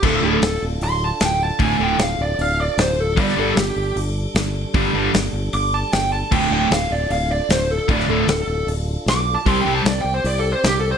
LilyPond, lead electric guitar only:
\new Staff \with { instrumentName = "Lead electric guitar" } { \time 4/4 \key d \minor \tempo 4 = 153 a'8 a'4 r8 c'''8 a''8 g''8 a''8 | gis''8 g''8 f''8 d''8 f''8 d''8 c''8 a'8 | d''8 a'8 g'4 r2 | r2 d'''8 a''8 g''8 a''8 |
g''8 g''8 f''8 d''8 f''8 d''8 c''8 a'8 | d''8 a'8 a'4 r4 \tuplet 3/2 { d'''4 a''8 } | \tuplet 3/2 { c'''8 g''8 a''8 d''8 g''8 c''8 d''8 a'8 c''8 g'8 a'8 c''8 } | }